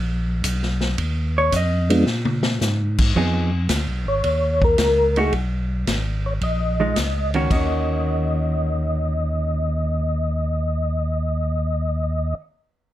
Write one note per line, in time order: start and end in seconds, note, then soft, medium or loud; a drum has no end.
0.00 0.42 A#1 medium
0.44 0.96 B1 medium
0.44 kick soft
0.44 hi-hat pedal medium
0.44 ride medium
0.63 snare soft
0.81 snare soft
0.98 1.51 D#2 medium
0.98 kick soft
0.98 ride medium
1.38 1.53 C#5 loud
1.52 2.05 F2 medium
1.52 kick soft
1.52 hi-hat pedal medium
1.52 ride medium
1.56 2.05 D#5 medium
1.90 2.05 G#3 medium
1.90 2.05 B3 medium
1.90 2.05 D4 medium
1.90 2.06 F4 medium
1.90 ride medium
2.06 2.59 A#2 medium
2.06 snare soft
2.25 high tom medium
2.43 snare medium
2.61 3.14 G#2 medium
2.61 snare medium
2.61 hi-hat pedal medium
2.98 kick medium
2.98 crash medium
3.15 3.68 F2 medium
3.15 3.50 F3 medium
3.15 3.50 B3 medium
3.15 3.50 D#4 medium
3.15 3.50 G#4 medium
3.15 kick soft
3.69 3.87 D2 medium
3.69 kick soft
3.69 snare medium
3.69 hi-hat pedal medium
3.69 ride medium
3.88 4.06 B1 medium
4.06 4.23 G#1 medium
4.06 4.64 C#5 loud
4.24 4.77 D#2 medium
4.24 kick soft
4.24 ride medium
4.62 5.19 A#4 loud
4.62 kick medium
4.78 5.31 C#2 medium
4.78 kick soft
4.78 snare medium
4.78 hi-hat pedal medium
4.78 ride medium
5.16 5.32 A3 medium
5.16 5.32 D#4 medium
5.16 5.32 F#4 medium
5.16 5.34 G#4 medium
5.16 ride soft
5.32 5.85 B1 medium
5.32 kick soft
5.32 ride soft
5.87 6.40 G#1 medium
5.87 kick soft
5.87 snare medium
5.87 hi-hat pedal soft
5.87 ride medium
6.26 6.33 C#5 medium
6.41 6.94 A#1 medium
6.41 7.30 D#5 medium
6.41 kick soft
6.41 ride soft
6.80 6.95 F3 medium
6.80 6.95 G#3 medium
6.80 6.95 D#4 medium
6.96 7.49 C#2 medium
6.96 kick soft
6.96 snare medium
6.96 hi-hat pedal medium
6.96 ride medium
7.34 7.49 D#3 medium
7.34 7.50 A#3 medium
7.34 7.50 C#4 medium
7.34 7.50 F#4 medium
7.34 ride soft
7.50 12.34 D#2 medium
7.50 12.38 D#3 medium
7.50 12.39 A#3 medium
7.50 12.40 C#4 medium
7.50 12.41 F#4 medium
7.50 12.35 D#5 medium
7.50 kick soft
7.50 crash medium